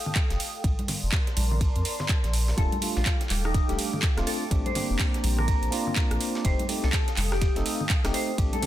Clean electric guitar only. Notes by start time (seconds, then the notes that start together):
2.58 A4
2.97 F4
3.45 D#4
4.27 A4
4.66 C5
5.39 A#4
6.45 C5
6.84 A4
7.32 G4
8.14 C5
8.53 A4